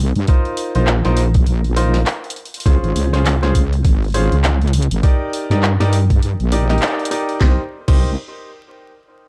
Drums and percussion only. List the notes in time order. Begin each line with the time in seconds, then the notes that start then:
0.15 open hi-hat
0.27 kick, open hi-hat
0.45 open hi-hat
0.57 open hi-hat
0.75 open hi-hat
0.87 clap
1.05 snare, open hi-hat
1.17 open hi-hat
1.34 kick, open hi-hat
1.47 open hi-hat
1.64 open hi-hat
1.77 open hi-hat
1.94 snare, open hi-hat
2.06 clap, open hi-hat
2.24 open hi-hat
2.30 closed hi-hat
2.36 open hi-hat
2.45 open hi-hat
2.54 open hi-hat
2.60 open hi-hat
2.66 kick, open hi-hat
2.84 open hi-hat
2.96 open hi-hat
3.14 snare, open hi-hat
3.26 clap, open hi-hat
3.43 snare, open hi-hat
3.55 kick, open hi-hat
3.73 open hi-hat
3.85 kick, open hi-hat
4.02 open hi-hat
4.04 open hi-hat
4.08 open hi-hat
4.10 open hi-hat
4.12 open hi-hat
4.14 open hi-hat
4.32 open hi-hat
4.44 clap, open hi-hat
4.62 open hi-hat
4.68 closed hi-hat
4.73 closed hi-hat, open hi-hat
4.82 closed hi-hat
4.91 closed hi-hat, open hi-hat
5.03 kick, open hi-hat
5.33 open hi-hat
5.51 snare, open hi-hat
5.63 clap
5.81 snare, open hi-hat
5.93 open hi-hat
6.10 kick, open hi-hat
6.23 open hi-hat
6.40 open hi-hat
6.52 open hi-hat
6.70 snare, open hi-hat
6.78 clap, open hi-hat
6.82 open hi-hat
6.88 open hi-hat
6.99 open hi-hat
7.05 closed hi-hat
7.11 open hi-hat
7.29 open hi-hat
7.41 kick, snare
7.88 kick, crash